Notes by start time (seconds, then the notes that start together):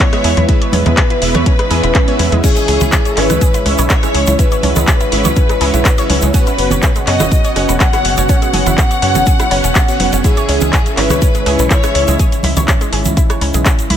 Already playing: G#2 B2 E3 B3 E4
0.00 C#5, kick, clap, closed hi-hat
0.13 G#3 B3 E4 B4 E5, cross-stick, closed hi-hat
0.24 E2 G#4, open hi-hat
0.37 E2 E4, closed hi-hat, high conga
0.49 G#3 B3 E4 B4 E5, kick, closed hi-hat
0.62 C#5, closed hi-hat
0.72 E2 C#4, open hi-hat, high conga
0.86 E2 G#3, closed hi-hat, low conga, high woodblock
0.97 G#4, kick, clap, closed hi-hat
1.10 E4, closed hi-hat
1.22 E1 G#3 B3 E4 B4 E5, open hi-hat
1.34 E2 C#5, cross-stick, closed hi-hat, high conga, low conga
1.46 C#4, kick, closed hi-hat, swell
1.59 G#3, cross-stick, closed hi-hat, high woodblock
1.70 E2 G#3 B3 E4 G#4 B4 E5, open hi-hat, high woodblock
1.83 E1 E4, closed hi-hat
1.95 kick, clap, closed hi-hat
2.08 G#3 B3 E4 B4 C#5 E5, closed hi-hat
2.19 E2 C#4, open hi-hat, high conga
2.32 E2 G#3, closed hi-hat, high conga
2.44 G#2 C#3 G#3 C#4 E4 G#4 C#5 E5, kick, closed hi-hat, crash, shaker
2.56 G#3, closed hi-hat, shaker
2.68 C#2 G#4, open hi-hat
2.81 C#2 E4, closed hi-hat, low conga, shaker
2.92 kick, clap, closed hi-hat, shaker
3.05 C#5, closed hi-hat, shaker
3.17 G#1 G#3 C#4 E4 B4 C#5 E5, clap, open hi-hat
3.30 C#2 G#3, cross-stick, closed hi-hat, high conga, low conga, shaker
3.41 G#4, kick, closed hi-hat, shaker
3.54 E4, closed hi-hat, shaker
3.66 C#2 G#3 C#4 E4 C#5 E5, cross-stick, open hi-hat
3.78 B1 C#5, closed hi-hat, high woodblock, shaker
3.90 C#4 C#5, kick, clap, closed hi-hat, shaker
4.03 G#3 C#4 E4 C#5 E5, cross-stick, closed hi-hat, shaker
4.14 C#2 G#4, open hi-hat
4.27 C#2 E4, closed hi-hat, high conga, shaker
4.39 G#3 C#4 E4 F#4 B4 C#5 E5, kick, closed hi-hat, shaker
4.52 C#5, closed hi-hat, shaker
4.63 C#2 C#4, open hi-hat, high conga
4.76 C#2 G#3, closed hi-hat, low conga, high woodblock, shaker
4.87 G#4, kick, clap, closed hi-hat, shaker
5.00 E4, closed hi-hat, shaker
5.12 G#1 G#3 C#4 E4 C#5 E5, open hi-hat
5.25 C#2 C#5, closed hi-hat, high conga, low conga, shaker
5.36 C#4, kick, closed hi-hat, shaker
5.49 G#3, cross-stick, closed hi-hat, high woodblock, shaker
5.61 C#2 G#3 C#4 E4 G#4 C#5 E5, open hi-hat, high woodblock
5.74 B1 E4, closed hi-hat, shaker
5.85 kick, clap, closed hi-hat, shaker
5.98 G#3 C#4 E4 C#5 E5, closed hi-hat, shaker
6.10 C#2 C#4, open hi-hat, high conga
6.22 C#2 G#3, closed hi-hat, high conga, shaker
6.34 B2 F#3 B3 C#4 F#4 G#4 B4 C#5 F#5, kick, closed hi-hat, shaker
6.47 E4, closed hi-hat, shaker
6.58 F#1, open hi-hat
6.70 F#1 C#5, closed hi-hat, low conga, shaker
6.82 C#4, kick, clap, closed hi-hat, shaker
6.95 G#3, closed hi-hat, shaker
7.07 F#2 B3 C#4 F#4 G#4 C#5 D#5 F#5, clap, open hi-hat
7.20 F#1 E4, cross-stick, closed hi-hat, high conga, low conga, shaker
7.32 kick, closed hi-hat, shaker
7.44 C#5, closed hi-hat, shaker
7.56 F#1 B3 C#4 F#4 C#5 F#5, cross-stick, open hi-hat
7.69 E1 G#3, closed hi-hat, high woodblock, shaker
7.80 G#4 F#5, kick, clap, closed hi-hat, shaker
7.93 B3 C#4 E4 F#4 C#5 F#5, cross-stick, closed hi-hat, shaker
8.05 F#1, open hi-hat
8.17 F#1 C#5, closed hi-hat, high conga, shaker
8.29 B3 C#4 F#4 C#5 F#5, kick, closed hi-hat, shaker
8.42 G#3, closed hi-hat, shaker
8.53 F#1 G#4, open hi-hat, high conga
8.66 F#1 E4, closed hi-hat, low conga, high woodblock, shaker
8.78 kick, clap, closed hi-hat, shaker
8.91 C#5, closed hi-hat, shaker
9.02 F#2 B3 C#4 F#4 C#5 F#5, open hi-hat
9.15 F#1 G#3, closed hi-hat, high conga, low conga, shaker
9.27 G#4, kick, closed hi-hat, shaker
9.39 E4, cross-stick, closed hi-hat, high woodblock, shaker
9.50 F#1 B3 C#4 F#4 C#5 F#5, open hi-hat, high woodblock
9.64 E1 C#4, closed hi-hat, shaker
9.75 C#4, kick, clap, closed hi-hat, shaker
9.88 B3 C#4 F#4 C#5 F#5, closed hi-hat, shaker
10.00 F#1 B3, open hi-hat, high conga
10.13 F#1 C#4, closed hi-hat, high conga, shaker
10.24 G#2 E3 G#3 C#4 E4 G#4 C#5 E5, kick, closed hi-hat, shaker
10.37 C#5, closed hi-hat, shaker
10.49 C#2 C#4, open hi-hat
10.61 C#2 G#3, closed hi-hat, low conga, shaker
10.73 G#4, kick, clap, closed hi-hat, shaker
10.86 closed hi-hat, shaker
10.97 G#1 G#3 C#4 E4 B4 C#5 E5, clap, open hi-hat
11.10 C#2 C#5, cross-stick, closed hi-hat, high conga, low conga, shaker
11.22 C#4, kick, closed hi-hat, shaker
11.35 G#3, closed hi-hat, shaker
11.46 C#2 G#3 C#4 E4 G#4 C#5 E5, cross-stick, open hi-hat
11.59 B1, closed hi-hat, high woodblock, shaker
11.70 E4 C#5, kick, clap, closed hi-hat, shaker
11.83 G#3 C#4 E4 C#5 E5, cross-stick, closed hi-hat, shaker
11.95 C#2 C#4, open hi-hat
12.08 C#2 G#3, closed hi-hat, high conga, shaker
12.19 G#4, kick, closed hi-hat, shaker
12.32 closed hi-hat, shaker
12.43 C#2 E4, open hi-hat, high conga
12.57 C#2 C#5, closed hi-hat, low conga, high woodblock, shaker
12.68 C#4, kick, clap, closed hi-hat, shaker
12.81 G#3, closed hi-hat, shaker
12.93 G#1 G#4, open hi-hat
13.05 C#2, closed hi-hat, high conga, low conga, shaker
13.17 E4, kick, closed hi-hat, shaker
13.30 C#5, cross-stick, closed hi-hat, high woodblock, shaker
13.41 C#2 C#4, open hi-hat, high woodblock
13.54 B1 G#3, closed hi-hat, shaker
13.65 G#4, kick, clap, closed hi-hat, shaker
13.79 closed hi-hat, shaker
13.90 C#2 E4, open hi-hat, high conga